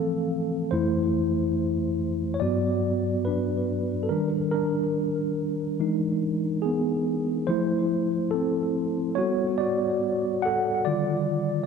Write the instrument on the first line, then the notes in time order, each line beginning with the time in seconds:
tine electric piano
Already playing: E3 F3 A3 C4 A4 F5
0.71 F2 E3 A3 E4 C5
2.34 C#5
2.40 G2 F#3 B3 F#4 D5
3.25 D4 B4
4.03 A4
4.09 D#3 G3 D4 A#4
4.51 D4 A#4
5.79 E3 G#3 D#4
6.62 B3 G#4
7.47 F3 A3 E4 C5
8.31 C4 A4
9.15 G3 B3 F#4 C#5
9.58 F#4 D5
10.42 A4 F#5
10.85 D3 D#3 G3 F4 D5